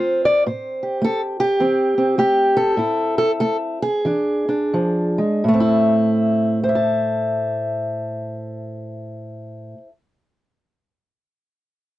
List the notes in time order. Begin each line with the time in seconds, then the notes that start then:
Already playing: A3 C4 F4 C5
0.25 D5
0.46 A2 C5
0.83 G4
1.02 A3 A4
1.40 G4
1.60 E3 C4
1.98 C4
2.18 A3 G4
2.57 A4
2.77 A2 E4
3.18 A4
3.40 A3 A4
3.82 G#4
4.05 E3 D4
4.49 D4
4.74 F3
5.18 G#3
5.44 A2
5.48 A3
5.54 C4
5.60 E4
6.64 C5
6.69 E5
6.75 A5